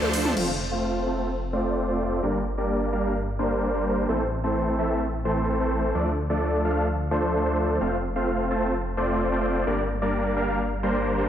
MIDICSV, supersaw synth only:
0, 0, Header, 1, 2, 480
1, 0, Start_track
1, 0, Key_signature, -1, "major"
1, 0, Tempo, 465116
1, 380, Time_signature, 4, 2, 24, 8
1, 11649, End_track
2, 0, Start_track
2, 0, Title_t, "Supersaw synth"
2, 0, Program_c, 0, 81
2, 20, Note_on_c, 0, 53, 89
2, 20, Note_on_c, 0, 57, 81
2, 20, Note_on_c, 0, 62, 80
2, 20, Note_on_c, 0, 69, 83
2, 20, Note_on_c, 0, 72, 96
2, 351, Note_off_c, 0, 53, 0
2, 351, Note_off_c, 0, 57, 0
2, 351, Note_off_c, 0, 62, 0
2, 351, Note_off_c, 0, 69, 0
2, 351, Note_off_c, 0, 72, 0
2, 379, Note_on_c, 0, 57, 85
2, 379, Note_on_c, 0, 60, 76
2, 379, Note_on_c, 0, 65, 81
2, 379, Note_on_c, 0, 72, 81
2, 379, Note_on_c, 0, 77, 97
2, 526, Note_off_c, 0, 57, 0
2, 526, Note_off_c, 0, 60, 0
2, 526, Note_off_c, 0, 65, 0
2, 526, Note_off_c, 0, 72, 0
2, 526, Note_off_c, 0, 77, 0
2, 740, Note_on_c, 0, 57, 76
2, 740, Note_on_c, 0, 60, 71
2, 740, Note_on_c, 0, 65, 73
2, 740, Note_on_c, 0, 72, 72
2, 740, Note_on_c, 0, 77, 87
2, 1071, Note_off_c, 0, 57, 0
2, 1071, Note_off_c, 0, 60, 0
2, 1071, Note_off_c, 0, 65, 0
2, 1071, Note_off_c, 0, 72, 0
2, 1071, Note_off_c, 0, 77, 0
2, 1099, Note_on_c, 0, 60, 85
2, 1099, Note_on_c, 0, 72, 86
2, 1099, Note_on_c, 0, 81, 101
2, 1100, Note_on_c, 0, 57, 88
2, 1100, Note_on_c, 0, 65, 82
2, 1334, Note_off_c, 0, 57, 0
2, 1334, Note_off_c, 0, 60, 0
2, 1334, Note_off_c, 0, 65, 0
2, 1334, Note_off_c, 0, 72, 0
2, 1334, Note_off_c, 0, 81, 0
2, 1579, Note_on_c, 0, 57, 92
2, 1579, Note_on_c, 0, 60, 89
2, 1579, Note_on_c, 0, 65, 83
2, 1579, Note_on_c, 0, 72, 87
2, 1579, Note_on_c, 0, 74, 99
2, 1911, Note_off_c, 0, 57, 0
2, 1911, Note_off_c, 0, 60, 0
2, 1911, Note_off_c, 0, 65, 0
2, 1911, Note_off_c, 0, 72, 0
2, 1911, Note_off_c, 0, 74, 0
2, 1939, Note_on_c, 0, 60, 70
2, 1940, Note_on_c, 0, 57, 83
2, 1940, Note_on_c, 0, 65, 75
2, 1940, Note_on_c, 0, 72, 77
2, 1940, Note_on_c, 0, 74, 90
2, 2271, Note_off_c, 0, 57, 0
2, 2271, Note_off_c, 0, 60, 0
2, 2271, Note_off_c, 0, 65, 0
2, 2271, Note_off_c, 0, 72, 0
2, 2271, Note_off_c, 0, 74, 0
2, 2300, Note_on_c, 0, 55, 90
2, 2300, Note_on_c, 0, 58, 77
2, 2300, Note_on_c, 0, 62, 80
2, 2300, Note_on_c, 0, 70, 78
2, 2300, Note_on_c, 0, 74, 95
2, 2446, Note_off_c, 0, 55, 0
2, 2446, Note_off_c, 0, 58, 0
2, 2446, Note_off_c, 0, 62, 0
2, 2446, Note_off_c, 0, 70, 0
2, 2446, Note_off_c, 0, 74, 0
2, 2660, Note_on_c, 0, 55, 80
2, 2660, Note_on_c, 0, 58, 70
2, 2660, Note_on_c, 0, 62, 69
2, 2660, Note_on_c, 0, 70, 71
2, 2660, Note_on_c, 0, 74, 88
2, 2991, Note_off_c, 0, 55, 0
2, 2991, Note_off_c, 0, 58, 0
2, 2991, Note_off_c, 0, 62, 0
2, 2991, Note_off_c, 0, 70, 0
2, 2991, Note_off_c, 0, 74, 0
2, 3020, Note_on_c, 0, 55, 95
2, 3020, Note_on_c, 0, 58, 84
2, 3020, Note_on_c, 0, 62, 85
2, 3020, Note_on_c, 0, 70, 87
2, 3020, Note_on_c, 0, 77, 98
2, 3254, Note_off_c, 0, 55, 0
2, 3254, Note_off_c, 0, 58, 0
2, 3254, Note_off_c, 0, 62, 0
2, 3254, Note_off_c, 0, 70, 0
2, 3254, Note_off_c, 0, 77, 0
2, 3499, Note_on_c, 0, 55, 97
2, 3499, Note_on_c, 0, 58, 83
2, 3499, Note_on_c, 0, 62, 87
2, 3499, Note_on_c, 0, 70, 86
2, 3499, Note_on_c, 0, 72, 99
2, 3831, Note_off_c, 0, 55, 0
2, 3831, Note_off_c, 0, 58, 0
2, 3831, Note_off_c, 0, 62, 0
2, 3831, Note_off_c, 0, 70, 0
2, 3831, Note_off_c, 0, 72, 0
2, 3860, Note_on_c, 0, 55, 85
2, 3860, Note_on_c, 0, 58, 75
2, 3860, Note_on_c, 0, 62, 73
2, 3860, Note_on_c, 0, 70, 70
2, 3860, Note_on_c, 0, 72, 90
2, 4191, Note_off_c, 0, 55, 0
2, 4191, Note_off_c, 0, 58, 0
2, 4191, Note_off_c, 0, 62, 0
2, 4191, Note_off_c, 0, 70, 0
2, 4191, Note_off_c, 0, 72, 0
2, 4220, Note_on_c, 0, 52, 83
2, 4220, Note_on_c, 0, 57, 77
2, 4220, Note_on_c, 0, 60, 79
2, 4220, Note_on_c, 0, 69, 81
2, 4220, Note_on_c, 0, 72, 103
2, 4366, Note_off_c, 0, 52, 0
2, 4366, Note_off_c, 0, 57, 0
2, 4366, Note_off_c, 0, 69, 0
2, 4366, Note_off_c, 0, 72, 0
2, 4367, Note_off_c, 0, 60, 0
2, 4580, Note_on_c, 0, 52, 76
2, 4580, Note_on_c, 0, 57, 70
2, 4580, Note_on_c, 0, 60, 69
2, 4580, Note_on_c, 0, 69, 70
2, 4580, Note_on_c, 0, 72, 84
2, 4911, Note_off_c, 0, 52, 0
2, 4911, Note_off_c, 0, 57, 0
2, 4911, Note_off_c, 0, 60, 0
2, 4911, Note_off_c, 0, 69, 0
2, 4911, Note_off_c, 0, 72, 0
2, 4940, Note_on_c, 0, 52, 92
2, 4940, Note_on_c, 0, 57, 82
2, 4940, Note_on_c, 0, 60, 89
2, 4940, Note_on_c, 0, 69, 80
2, 4940, Note_on_c, 0, 76, 101
2, 5174, Note_off_c, 0, 52, 0
2, 5174, Note_off_c, 0, 57, 0
2, 5174, Note_off_c, 0, 60, 0
2, 5174, Note_off_c, 0, 69, 0
2, 5174, Note_off_c, 0, 76, 0
2, 5419, Note_on_c, 0, 57, 83
2, 5420, Note_on_c, 0, 52, 91
2, 5420, Note_on_c, 0, 60, 86
2, 5420, Note_on_c, 0, 69, 83
2, 5420, Note_on_c, 0, 72, 104
2, 5751, Note_off_c, 0, 52, 0
2, 5751, Note_off_c, 0, 57, 0
2, 5751, Note_off_c, 0, 60, 0
2, 5751, Note_off_c, 0, 69, 0
2, 5751, Note_off_c, 0, 72, 0
2, 5779, Note_on_c, 0, 69, 76
2, 5780, Note_on_c, 0, 52, 77
2, 5780, Note_on_c, 0, 57, 75
2, 5780, Note_on_c, 0, 60, 73
2, 5780, Note_on_c, 0, 72, 93
2, 6111, Note_off_c, 0, 52, 0
2, 6111, Note_off_c, 0, 57, 0
2, 6111, Note_off_c, 0, 60, 0
2, 6111, Note_off_c, 0, 69, 0
2, 6111, Note_off_c, 0, 72, 0
2, 6140, Note_on_c, 0, 53, 88
2, 6140, Note_on_c, 0, 57, 83
2, 6140, Note_on_c, 0, 62, 82
2, 6140, Note_on_c, 0, 69, 80
2, 6140, Note_on_c, 0, 74, 92
2, 6286, Note_off_c, 0, 53, 0
2, 6286, Note_off_c, 0, 69, 0
2, 6286, Note_off_c, 0, 74, 0
2, 6287, Note_off_c, 0, 57, 0
2, 6287, Note_off_c, 0, 62, 0
2, 6500, Note_on_c, 0, 53, 76
2, 6500, Note_on_c, 0, 57, 68
2, 6500, Note_on_c, 0, 62, 69
2, 6500, Note_on_c, 0, 69, 70
2, 6500, Note_on_c, 0, 74, 83
2, 6831, Note_off_c, 0, 53, 0
2, 6831, Note_off_c, 0, 57, 0
2, 6831, Note_off_c, 0, 62, 0
2, 6831, Note_off_c, 0, 69, 0
2, 6831, Note_off_c, 0, 74, 0
2, 6860, Note_on_c, 0, 53, 89
2, 6860, Note_on_c, 0, 57, 81
2, 6860, Note_on_c, 0, 62, 85
2, 6860, Note_on_c, 0, 69, 89
2, 6860, Note_on_c, 0, 77, 101
2, 7094, Note_off_c, 0, 53, 0
2, 7094, Note_off_c, 0, 57, 0
2, 7094, Note_off_c, 0, 62, 0
2, 7094, Note_off_c, 0, 69, 0
2, 7094, Note_off_c, 0, 77, 0
2, 7340, Note_on_c, 0, 53, 93
2, 7340, Note_on_c, 0, 57, 87
2, 7340, Note_on_c, 0, 62, 85
2, 7340, Note_on_c, 0, 69, 87
2, 7340, Note_on_c, 0, 72, 106
2, 7671, Note_off_c, 0, 53, 0
2, 7671, Note_off_c, 0, 57, 0
2, 7671, Note_off_c, 0, 62, 0
2, 7671, Note_off_c, 0, 69, 0
2, 7671, Note_off_c, 0, 72, 0
2, 7700, Note_on_c, 0, 53, 80
2, 7700, Note_on_c, 0, 57, 76
2, 7700, Note_on_c, 0, 62, 76
2, 7700, Note_on_c, 0, 69, 76
2, 7700, Note_on_c, 0, 72, 90
2, 8031, Note_off_c, 0, 53, 0
2, 8031, Note_off_c, 0, 57, 0
2, 8031, Note_off_c, 0, 62, 0
2, 8031, Note_off_c, 0, 69, 0
2, 8031, Note_off_c, 0, 72, 0
2, 8059, Note_on_c, 0, 57, 90
2, 8059, Note_on_c, 0, 60, 79
2, 8059, Note_on_c, 0, 65, 83
2, 8059, Note_on_c, 0, 72, 81
2, 8059, Note_on_c, 0, 77, 97
2, 8206, Note_off_c, 0, 57, 0
2, 8206, Note_off_c, 0, 60, 0
2, 8206, Note_off_c, 0, 65, 0
2, 8206, Note_off_c, 0, 72, 0
2, 8206, Note_off_c, 0, 77, 0
2, 8420, Note_on_c, 0, 57, 81
2, 8420, Note_on_c, 0, 60, 70
2, 8420, Note_on_c, 0, 65, 73
2, 8420, Note_on_c, 0, 72, 71
2, 8420, Note_on_c, 0, 77, 87
2, 8751, Note_off_c, 0, 57, 0
2, 8751, Note_off_c, 0, 60, 0
2, 8751, Note_off_c, 0, 65, 0
2, 8751, Note_off_c, 0, 72, 0
2, 8751, Note_off_c, 0, 77, 0
2, 8779, Note_on_c, 0, 57, 94
2, 8779, Note_on_c, 0, 60, 86
2, 8779, Note_on_c, 0, 65, 82
2, 8779, Note_on_c, 0, 72, 82
2, 8779, Note_on_c, 0, 81, 101
2, 9014, Note_off_c, 0, 57, 0
2, 9014, Note_off_c, 0, 60, 0
2, 9014, Note_off_c, 0, 65, 0
2, 9014, Note_off_c, 0, 72, 0
2, 9014, Note_off_c, 0, 81, 0
2, 9259, Note_on_c, 0, 57, 97
2, 9259, Note_on_c, 0, 60, 91
2, 9259, Note_on_c, 0, 65, 83
2, 9259, Note_on_c, 0, 72, 85
2, 9259, Note_on_c, 0, 74, 108
2, 9591, Note_off_c, 0, 57, 0
2, 9591, Note_off_c, 0, 60, 0
2, 9591, Note_off_c, 0, 65, 0
2, 9591, Note_off_c, 0, 72, 0
2, 9591, Note_off_c, 0, 74, 0
2, 9619, Note_on_c, 0, 57, 82
2, 9619, Note_on_c, 0, 60, 77
2, 9619, Note_on_c, 0, 65, 74
2, 9619, Note_on_c, 0, 72, 75
2, 9619, Note_on_c, 0, 74, 90
2, 9951, Note_off_c, 0, 57, 0
2, 9951, Note_off_c, 0, 60, 0
2, 9951, Note_off_c, 0, 65, 0
2, 9951, Note_off_c, 0, 72, 0
2, 9951, Note_off_c, 0, 74, 0
2, 9979, Note_on_c, 0, 58, 81
2, 9979, Note_on_c, 0, 62, 82
2, 9980, Note_on_c, 0, 55, 94
2, 9980, Note_on_c, 0, 70, 86
2, 9980, Note_on_c, 0, 74, 96
2, 10126, Note_off_c, 0, 55, 0
2, 10126, Note_off_c, 0, 58, 0
2, 10126, Note_off_c, 0, 62, 0
2, 10126, Note_off_c, 0, 70, 0
2, 10126, Note_off_c, 0, 74, 0
2, 10339, Note_on_c, 0, 55, 76
2, 10339, Note_on_c, 0, 62, 76
2, 10339, Note_on_c, 0, 74, 87
2, 10340, Note_on_c, 0, 58, 73
2, 10340, Note_on_c, 0, 70, 72
2, 10671, Note_off_c, 0, 55, 0
2, 10671, Note_off_c, 0, 58, 0
2, 10671, Note_off_c, 0, 62, 0
2, 10671, Note_off_c, 0, 70, 0
2, 10671, Note_off_c, 0, 74, 0
2, 10699, Note_on_c, 0, 55, 91
2, 10699, Note_on_c, 0, 58, 87
2, 10699, Note_on_c, 0, 62, 79
2, 10699, Note_on_c, 0, 70, 85
2, 10699, Note_on_c, 0, 77, 97
2, 10934, Note_off_c, 0, 55, 0
2, 10934, Note_off_c, 0, 58, 0
2, 10934, Note_off_c, 0, 62, 0
2, 10934, Note_off_c, 0, 70, 0
2, 10934, Note_off_c, 0, 77, 0
2, 11179, Note_on_c, 0, 55, 97
2, 11179, Note_on_c, 0, 58, 86
2, 11179, Note_on_c, 0, 62, 86
2, 11179, Note_on_c, 0, 70, 84
2, 11179, Note_on_c, 0, 72, 108
2, 11511, Note_off_c, 0, 55, 0
2, 11511, Note_off_c, 0, 58, 0
2, 11511, Note_off_c, 0, 62, 0
2, 11511, Note_off_c, 0, 70, 0
2, 11511, Note_off_c, 0, 72, 0
2, 11538, Note_on_c, 0, 55, 83
2, 11538, Note_on_c, 0, 58, 76
2, 11538, Note_on_c, 0, 70, 77
2, 11538, Note_on_c, 0, 72, 93
2, 11539, Note_on_c, 0, 62, 77
2, 11649, Note_off_c, 0, 55, 0
2, 11649, Note_off_c, 0, 58, 0
2, 11649, Note_off_c, 0, 62, 0
2, 11649, Note_off_c, 0, 70, 0
2, 11649, Note_off_c, 0, 72, 0
2, 11649, End_track
0, 0, End_of_file